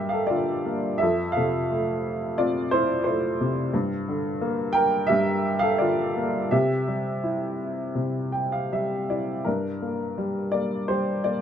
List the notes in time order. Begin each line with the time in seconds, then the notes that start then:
Already playing: G2 D3 A#3 G4 A#4 E5 G5
0.09 A4 F5
0.27 D3 F4 D5
0.66 A#3
0.98 F2 A4 E5
1.32 A4 F5
1.37 C3
1.71 A3
2.38 C4 F4 D5
2.71 E4 C5
3.04 A3 E4 C5
3.41 C3
3.74 G2
4.08 D3
4.41 A#3
4.73 A#4 G5
5.07 G2 G4 E5
5.59 A4 F5
5.78 D3 F4 D5
6.16 A#3
6.51 C3 G4 E5
6.88 G3
7.24 E4
7.95 C3
8.32 G5
8.52 F5
8.72 G3 E5
9.10 E4 D5
9.45 G2 D4 A#4
9.82 A#3
10.18 G3
10.52 A#3 D5
10.88 G3 G4 C5
11.24 A#3 D5